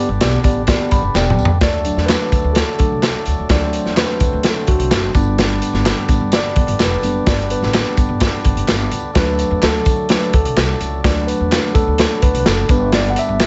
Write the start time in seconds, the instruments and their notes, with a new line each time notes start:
Already playing: tonewheel organ D3 G3 B3 D4
0.09 upright bass G1
0.20 upright bass B1, tine electric piano B3 G4 D5, snare, clap, closed hi-hat, tambourine
0.44 upright bass A1, tine electric piano B3 G4 D5, kick, closed hi-hat, tambourine
0.67 tine electric piano B3 G4 D5, kick, snare, closed hi-hat, tambourine
0.91 upright bass G1, tine electric piano B5, kick, closed hi-hat, tambourine
1.02 upright bass F#1
1.14 upright bass E1, tine electric piano B3 G4 D5 G5, snare, clap, tambourine
1.30 mid tom
1.37 upright bass C#2, tambourine
1.45 floor tom
1.61 upright bass D2, tonewheel organ D3 F#3 A3 D4, tine electric piano D5, kick, snare, closed hi-hat, tambourine
1.73 closed hi-hat
1.85 tine electric piano F#3 A3 D4, closed hi-hat, tambourine
1.96 upright bass E2, snare
2.06 tine electric piano B4, snare, clap, closed hi-hat, tambourine
2.32 upright bass D2, kick, closed hi-hat, tambourine
2.44 upright bass D2
2.53 tine electric piano A4, snare, closed hi-hat, tambourine
2.79 upright bass D2, tine electric piano F#3 A3 D4 A4, kick, closed hi-hat, tambourine
2.92 upright bass C2
3.03 snare, clap, closed hi-hat, tambourine
3.26 upright bass D2, closed hi-hat, tambourine
3.40 upright bass D2
3.49 upright bass D2, tine electric piano F#3 A3 D4 D5, tonewheel organ C4, kick, snare, closed hi-hat, tambourine
3.73 closed hi-hat, tambourine
3.86 upright bass E2, snare
3.97 tine electric piano B4, snare, clap, closed hi-hat, tambourine
4.20 upright bass D2, kick, closed hi-hat, tambourine
4.33 upright bass D2
4.43 tine electric piano A4, snare, closed hi-hat, tambourine
4.67 upright bass D2, tine electric piano F#4, kick, closed hi-hat
4.79 upright bass C2, closed hi-hat
4.91 upright bass F#1, snare, clap, closed hi-hat, tambourine
5.14 upright bass G1, tonewheel organ D3 G3 B3 D4, tine electric piano G3 B3 D4, kick, closed hi-hat, tambourine
5.38 snare, closed hi-hat, tambourine
5.50 closed hi-hat
5.62 closed hi-hat, tambourine
5.73 upright bass G1, snare
5.85 snare, clap, closed hi-hat, tambourine
6.09 upright bass A1, tine electric piano G3 B3 D4, kick, closed hi-hat, tambourine
6.21 upright bass G1
6.32 tine electric piano D5, snare, closed hi-hat, tambourine
6.56 upright bass G1, kick, closed hi-hat
6.67 upright bass G1, closed hi-hat
6.79 upright bass F1, tine electric piano B4, snare, clap, closed hi-hat, tambourine
7.02 upright bass F#1, tine electric piano G3 B3 D4, closed hi-hat, tambourine
7.26 upright bass G1, tine electric piano D5, kick, snare, closed hi-hat, tambourine
7.39 closed hi-hat
7.50 tine electric piano B4, closed hi-hat, tambourine
7.62 upright bass A1, snare
7.74 snare, clap, closed hi-hat, tambourine
7.97 upright bass G1, kick, closed hi-hat, tambourine
8.09 upright bass G1
8.20 kick, snare, closed hi-hat, tambourine
8.44 upright bass G1, kick, closed hi-hat, tambourine
8.55 upright bass F#1, closed hi-hat
8.68 upright bass G1, snare, clap, closed hi-hat, tambourine
8.91 upright bass C#2, closed hi-hat, tambourine
9.14 upright bass D2, tonewheel organ F#3 A3, tine electric piano F#3 A3 D4, kick, snare, closed hi-hat
9.18 tine electric piano B4
9.39 closed hi-hat, tambourine
9.51 upright bass E2
9.62 upright bass D2, tine electric piano A4, snare, clap, closed hi-hat, tambourine
9.85 upright bass D2, kick, closed hi-hat, tambourine
10.09 tine electric piano F#3 A3 D4 B4, snare, closed hi-hat, tambourine
10.33 upright bass D2, tine electric piano A4, kick, closed hi-hat
10.45 upright bass C2, closed hi-hat
10.56 upright bass C2, snare, clap, closed hi-hat, tambourine
10.80 upright bass C#2, closed hi-hat, tambourine
11.04 upright bass D2, tine electric piano F#3 A3 D4 D5, tonewheel organ B3, kick, snare, closed hi-hat
11.27 tine electric piano B4, closed hi-hat, tambourine
11.40 upright bass E2
11.52 snare, clap, closed hi-hat, tambourine
11.75 upright bass D2, tine electric piano A4, kick, closed hi-hat, tambourine
11.88 upright bass D2
11.98 snare, closed hi-hat, tambourine
12.22 upright bass D2, tine electric piano B4, kick, closed hi-hat, tambourine
12.34 upright bass C2, closed hi-hat
12.40 tine electric piano B4
12.46 upright bass F#1, tine electric piano A4, snare, clap, closed hi-hat, tambourine
12.69 upright bass G1, tine electric piano G3 B3 D4 B4, tonewheel organ G3, kick, closed hi-hat, tambourine
12.92 tine electric piano D5, snare, closed hi-hat, tambourine
13.04 closed hi-hat
13.10 tine electric piano F#5
13.16 tine electric piano E5, closed hi-hat, tambourine
13.28 upright bass G1
13.40 snare, clap, closed hi-hat, tambourine